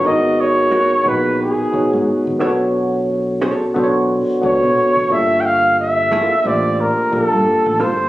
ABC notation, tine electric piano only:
X:1
M:4/4
L:1/16
Q:"Swing 16ths" 1/4=89
K:G#dor
V:1 name="Tine electric piano"
[B,DFGA]4- [B,DFGA] z [B,DFGB]4 [B,DFGc]4 [B,=DF=ABc]2- | [B,=DF=ABc]4 z2 [B,DFA^Bc]4 [=B,DFAc]4 [_B,D=F=GA]2- | [_B,=D=F=G=A]4 z2 [B,DFG^B]4 [_B,DFGA]4- [B,DFGA] z |]